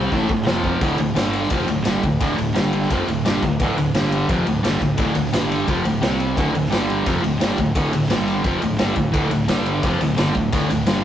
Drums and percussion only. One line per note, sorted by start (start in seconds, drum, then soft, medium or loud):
0.12 kick medium
0.12 open hi-hat medium
0.29 kick medium
0.46 snare loud
0.46 open hi-hat medium
0.64 kick medium
0.81 kick loud
0.81 ride medium
0.98 ride medium
1.16 snare loud
1.16 ride medium
1.33 ride medium
1.43 snare soft
1.50 kick loud
1.50 ride medium
1.68 ride medium
1.85 snare loud
1.85 ride medium
2.03 kick medium
2.03 ride medium
2.20 kick loud
2.20 ride medium
2.38 ride medium
2.56 snare loud
2.56 ride medium
2.73 ride medium
2.83 snare soft
2.90 kick loud
2.90 ride medium
3.08 ride medium
3.25 snare loud
3.25 ride medium
3.42 kick medium
3.42 ride medium
3.60 kick loud
3.60 ride medium
3.78 ride medium
3.94 snare loud
3.94 ride medium
4.12 ride medium
4.29 kick loud
4.29 ride medium
4.47 ride medium
4.64 snare loud
4.64 ride medium
4.81 kick medium
4.81 ride medium
4.98 kick loud
4.98 ride loud
5.15 ride medium
5.25 snare soft
5.33 snare loud
5.33 ride medium
5.52 ride medium
5.68 kick loud
5.68 ride medium
5.85 ride medium
6.03 snare loud
6.03 ride medium
6.20 ride medium
6.37 kick loud
6.37 ride medium
6.55 ride medium
6.64 snare soft
6.72 snare loud
6.72 ride medium
6.90 ride medium
7.06 kick loud
7.06 ride medium
7.24 ride medium
7.41 snare loud
7.41 ride loud
7.58 kick medium
7.58 ride medium
7.75 kick loud
7.75 ride loud
7.93 ride medium
8.03 snare soft
8.10 snare loud
8.10 ride loud
8.28 ride medium
8.44 kick loud
8.44 ride medium
8.62 ride medium
8.79 snare loud
8.79 ride medium
8.96 kick medium
8.96 ride medium
9.14 kick loud
9.14 ride medium
9.31 ride medium
9.48 snare loud
9.48 ride medium
9.66 ride medium
9.83 kick loud
9.83 ride medium
10.01 ride medium
10.18 snare loud
10.18 ride medium
10.35 kick medium
10.35 ride medium
10.53 kick loud
10.53 ride loud
10.70 ride medium
10.86 snare loud
10.86 ride medium